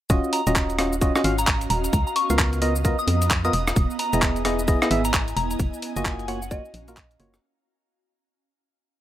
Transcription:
0.10 D#1 C#4 F4 F#4 D#5, kick, closed hi-hat, shaker
0.14 F#4
0.24 D#5, shaker
0.30 F5 A#5, open hi-hat
0.47 D#1 C#4 F4 F#4 D#5, closed hi-hat, shaker
0.56 kick, clap, shaker
0.70 closed hi-hat, shaker
0.79 C#4 F4 F#4 D#5, cross-stick, open hi-hat
0.93 shaker
1.01 C#4 F4 F#4 D#5, kick, closed hi-hat, shaker
1.16 C#4 F4 F#4 D#5, cross-stick, shaker
1.24 G#1 C#4 F4 F#4 F5, open hi-hat
1.38 A#5, closed hi-hat, shaker
1.47 A#5, kick, clap, shaker
1.61 closed hi-hat, shaker
1.70 D#1 A#5, open hi-hat
1.84 A#5, closed hi-hat, shaker
1.93 C#2 B3 A#5, kick, closed hi-hat, shaker
2.07 A#5, shaker
2.16 C#6, open hi-hat
2.30 C#2 B3 F4 A#4 F5, closed hi-hat, shaker
2.39 kick, clap, shaker
2.53 closed hi-hat, shaker
2.58 B3 F4 A#4 D#5 A#5, open hi-hat
2.76 shaker
2.85 B3 F4 A#4 D#5, kick, closed hi-hat, shaker
2.99 D#6, shaker
3.07 F2, open hi-hat
3.22 closed hi-hat, shaker
3.30 kick, clap, shaker
3.45 B3 F4 A#4 D#5 D#6, closed hi-hat, shaker
3.53 E1 D#6, open hi-hat
3.68 E4, cross-stick, closed hi-hat, shaker
3.76 E1, kick, closed hi-hat, shaker
3.90 shaker
3.99 A#5, open hi-hat
4.13 E1 B3 E4 G#4 D#5, closed hi-hat, shaker
4.21 G#5, kick, clap, shaker
4.36 closed hi-hat, shaker
4.45 B3 E4 G#4 D#5, cross-stick, open hi-hat
4.59 shaker
4.68 B3 E4 G#4 D#5, kick, closed hi-hat, shaker
4.82 B3 E4 G#4 D#5, cross-stick, shaker
4.91 G#1 B3 E4 G#4 E5, open hi-hat
5.05 A#5, closed hi-hat, shaker
5.14 kick, clap, shaker
5.28 closed hi-hat, shaker
5.36 E1 A#5, open hi-hat
5.51 A#5, closed hi-hat, shaker
5.59 F#1 C#4, kick, closed hi-hat, shaker
5.74 shaker
5.82 open hi-hat
5.92 F#4
5.96 F#1 A#3 F4 F#4 D#5 F5 G#5, closed hi-hat, shaker
6.05 kick, clap, shaker
6.19 closed hi-hat, shaker
6.28 A#3 F4 F#4 C#5 F#5, open hi-hat
6.42 F#5, shaker
6.51 A#3 F4 F#4 C#5 D#5, kick, closed hi-hat, shaker
6.65 shaker
6.74 A#1, open hi-hat
6.88 A#3 F4 F#4 A#4, closed hi-hat, shaker
6.97 kick, clap, shaker
7.11 closed hi-hat, shaker
7.20 F#1 A#3 F4 F#4 C#5, open hi-hat
7.34 cross-stick, closed hi-hat, shaker

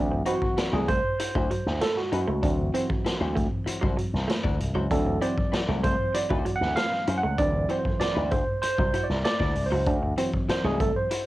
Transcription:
Already playing: D2 E3 F#3 C4
0.12 muted clean electric guitar stroke
0.26 C4 E4 F#4 C5, closed hi-hat
0.42 muted slap bass stroke, kick
0.57 E4 F#4 D5, muted slap bass stroke, muted clean electric guitar stroke, snare, closed hi-hat
0.73 C2 A3 E4 F#4 G#4 D5
0.88 A3 C5, kick, closed hi-hat
1.19 E4 F#4 C5, muted clean electric guitar stroke, closed hi-hat
1.35 D2 F#3 E4 F#4 C5, kick
1.50 F#3, closed hi-hat
1.66 D2, snare
1.81 A3 A4, snare, closed hi-hat
1.97 F#4, snare
2.12 F#2 E4 F#4 C5, muted clean electric guitar stroke, closed hi-hat
2.27 C#2 A3
2.43 D2 E3 F#3 C4 D4, kick, closed hi-hat
2.74 C4 E4 F#4 C5, closed hi-hat
2.90 muted clean electric guitar stroke, muted slap bass stroke, kick
3.05 E4 F#4 C5, muted slap bass stroke, snare, closed hi-hat
3.20 D2 E4 F#4 C5
3.35 A3, kick, closed hi-hat
3.66 E4 F#4 C5, muted clean electric guitar stroke, muted slap bass stroke, closed hi-hat
3.81 C2 F#3 E4 F#4 C5, kick
3.97 F#3, closed hi-hat
4.13 C2, snare
4.28 A3, snare, closed hi-hat
4.43 D2 E4 F#4 D5, muted clean electric guitar stroke, kick
4.60 C2, closed hi-hat
4.75 C#2 F#3 E4 F#4 C5
4.90 D2 E3 F#3 C4 D4 A4, kick, closed hi-hat
5.06 muted clean electric guitar stroke
5.21 C4 E4 F#4 C5 D5, closed hi-hat
5.37 muted slap bass stroke, kick
5.52 E4 F#4 D5, muted slap bass stroke, muted clean electric guitar stroke, snare, closed hi-hat
5.68 C2 A3 E4 F#4 D5
5.83 A3 C5, kick, closed hi-hat
6.14 E4 F#4 C5 D5, muted clean electric guitar stroke, closed hi-hat
6.30 D2 F#3 E4 F#4 C5, kick
6.45 F#3, closed hi-hat
6.56 F#5
6.61 D2, snare
6.76 A3 F5, snare, closed hi-hat
6.92 snare
7.07 F#2 E4 F#4 C5, muted clean electric guitar stroke, closed hi-hat
7.18 F#5
7.23 C#2 A3
7.38 D2 E3 F#3 C4 D4 D5, kick, closed hi-hat
7.69 C4 E4 F#4 C5, closed hi-hat
7.79 C5
7.85 muted slap bass stroke, muted clean electric guitar stroke, kick
8.00 E4 F#4 C5 D5, muted slap bass stroke, snare, closed hi-hat
8.15 D2 E4 F#4 C5
8.31 A3 C5, kick, closed hi-hat
8.62 C5, muted clean electric guitar stroke, muted slap bass stroke, closed hi-hat
8.78 C2 F#3, kick
8.94 F#3 E4 F#4 C5, closed hi-hat
9.04 D5
9.09 C2, snare
9.24 A3 D5, snare, closed hi-hat
9.40 D2 E4 F#4 D5, muted clean electric guitar stroke, kick, snare
9.55 C2, open hi-hat
9.66 C5
9.71 C#2 F#3 E4 F#4 C5
9.86 D2 D4, kick, closed hi-hat
10.03 muted clean electric guitar stroke
10.17 E3 F#3 C4 E4 F#4 C5, closed hi-hat
10.33 muted slap bass stroke, kick
10.48 E4 F#4 C5 D5, muted slap bass stroke, muted clean electric guitar stroke, snare, closed hi-hat
10.64 C2 A3 E4 F#4 G#4 D5
10.80 A3 A4, kick, closed hi-hat
10.96 C5
11.11 E4 F#4 C5, muted clean electric guitar stroke, closed hi-hat

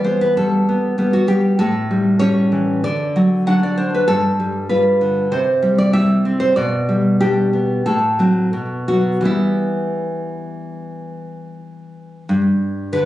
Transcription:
Already playing: E3 G3
0.04 B3 C5
0.21 B4
0.37 G3 A4
0.69 B3
0.98 G3 B3
1.13 F#4
1.27 G3 G4
1.59 A2 A4
1.91 G3
2.19 G3 C#4 C#5
2.52 E3
2.84 D3 D5
3.16 F#3
3.47 F#3 D4 F#5
3.63 D5
3.77 D4 C5
3.94 B4
4.08 G2 A4
4.40 G3
4.69 G3 F4 B4
5.01 D3
5.32 C3 C5
5.62 G3
5.78 D5
5.93 G3 E4 E5
6.25 C4
6.40 C5
6.56 B2 D5
6.89 G3
7.20 G3 D4 G4
7.53 B3
7.86 A2 A4
8.19 F#3 C4
8.53 B2
8.88 F#3 B3 F#4
9.21 E3 G3 B3
9.25 E4
12.29 G2
12.93 D3 B4

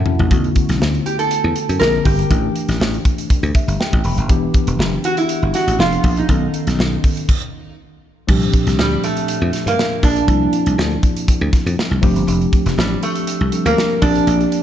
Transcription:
Already playing: E3 A3 C#4 F#4 A4 E5 F#5 A5 B5
0.06 C#4 E4, floor tom
0.19 A1, floor tom
0.30 B1 D3 A3 B3 F#4, kick, closed hi-hat
0.44 closed hi-hat
0.56 kick, closed hi-hat
0.69 B1, snare, closed hi-hat
0.81 D2, snare
0.95 closed hi-hat
1.06 G4, closed hi-hat
1.19 A4, closed hi-hat
1.31 closed hi-hat
1.44 E2
1.56 closed hi-hat
1.69 F#2, closed hi-hat
1.79 A#1 D3 A#3 C4 G#4 A#4, snare
2.05 G1 G4, kick, open hi-hat
2.19 closed hi-hat
2.29 A1 E3 A3 D4 G4, kick, closed hi-hat
2.56 closed hi-hat
2.68 A1, snare, closed hi-hat
2.80 A1, snare
2.94 closed hi-hat
3.05 kick, closed hi-hat
3.18 closed hi-hat
3.30 kick, closed hi-hat
3.43 D2, closed hi-hat
3.55 E5, kick, closed hi-hat
3.68 G1, closed hi-hat
3.80 G5, snare
3.93 A1, kick
4.04 E1 B5, open hi-hat
4.18 F#1, closed hi-hat
4.29 E1 E3 B3 D4 G4, kick, closed hi-hat
4.54 kick, closed hi-hat
4.67 E1, closed hi-hat
4.79 F#1, snare
5.04 F#4, closed hi-hat
5.17 E4, closed hi-hat
5.29 closed hi-hat
5.42 G1
5.54 F#4, snare, closed hi-hat
5.67 A1, closed hi-hat
5.79 F1 F3 B3 D4 F4 G#4, snare
5.93 closed hi-hat
6.03 A#1, kick, open hi-hat
6.17 D#4, closed hi-hat
6.29 B1 D#3 B3 C#4 A4, kick, closed hi-hat
6.54 closed hi-hat
6.67 B1, snare, closed hi-hat
6.78 B1, snare
7.04 kick, open hi-hat
7.17 closed hi-hat
7.29 kick, crash
8.28 C2 A#2 F3 C4 D4 G4, kick, crash
8.42 closed hi-hat
8.53 kick, closed hi-hat
8.67 C2, snare, closed hi-hat
8.78 D2 G3, snare
9.04 A3, closed hi-hat
9.17 closed hi-hat
9.28 closed hi-hat
9.42 F2
9.53 snare, closed hi-hat
9.66 G2 A#3, closed hi-hat
9.79 snare
10.03 A#1 D4, kick, open hi-hat
10.16 closed hi-hat
10.27 C2 F3 A#3 C4 D4 E4, kick, closed hi-hat
10.53 closed hi-hat
10.66 C2, closed hi-hat
10.78 D2, snare
11.03 kick, closed hi-hat
11.16 closed hi-hat
11.28 kick, closed hi-hat
11.41 D2
11.53 kick, snare, closed hi-hat
11.66 F2, closed hi-hat
11.79 snare
11.91 C2
12.02 F1 F3 A3 C4 D4 G4, kick, open hi-hat
12.16 G1, closed hi-hat
12.27 F1, closed hi-hat
12.41 closed hi-hat
12.53 kick, closed hi-hat
12.66 F1, snare, closed hi-hat
12.77 A1 G3, snare
13.03 A3, closed hi-hat
13.15 closed hi-hat
13.27 closed hi-hat
13.41 C2
13.52 F3 G3 C4 D4 A4, closed hi-hat
13.65 D2 A#3, closed hi-hat
13.78 snare
14.02 A#1 F3 A#3 C4 D4 G4, kick, open hi-hat
14.15 closed hi-hat
14.27 A#1, closed hi-hat
14.40 closed hi-hat
14.52 closed hi-hat

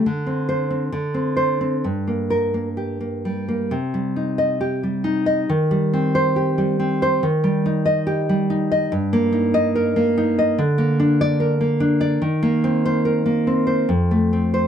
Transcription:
0.06 D3
0.27 C4
0.49 C5
0.70 C4
0.92 D3
1.14 C4
1.37 C5
1.61 C4
1.84 G2
2.07 A#3
2.30 A#4
2.54 A#3
2.77 G4
3.01 A#3
3.25 G3
3.48 A#3
3.71 C3
3.94 G3
4.16 D#4
4.38 D#5
4.61 G4
4.83 G3
5.04 D#4
5.26 D#5
5.49 D#3
5.71 G3
5.93 C4
6.15 C5
6.36 G4
6.58 G3
6.80 C4
7.02 C5
7.23 D#3
7.44 G3
7.66 D#4
7.86 D#5
8.07 G4
8.29 G3
8.50 D#4
8.72 D#5
8.92 G2
9.13 A#3
9.32 D#4
9.54 D#5
9.76 A#4
9.96 A#3
10.18 D#4
10.39 D#5
10.58 D3
10.78 A#3
11.00 D4
11.21 D5
11.40 A#4
11.61 A#3
11.80 D4
12.01 D5
12.22 D#3
12.43 A#3
12.64 C4
12.86 C5
13.05 A#4
13.26 A#3
13.47 C4
13.67 C5
13.89 F2
14.11 A3
14.33 C4
14.54 C5

